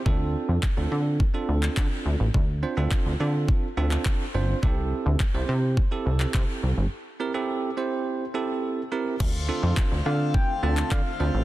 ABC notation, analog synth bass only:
X:1
M:4/4
L:1/16
Q:1/4=105
K:Dm
V:1 name="Analog synth bass" clef=bass
D,,3 F,, z D,, D,3 z D,,2 D, z D,, A,,, | D,,3 D,, z D,, D,3 z D,,2 z2 G,,,2 | C,,3 D,, z C,, C,3 z C,,2 C, z C,, G,,, | z16 |
D,,3 F,, z D,, D,3 z D,,2 D, z D,, A,,, |]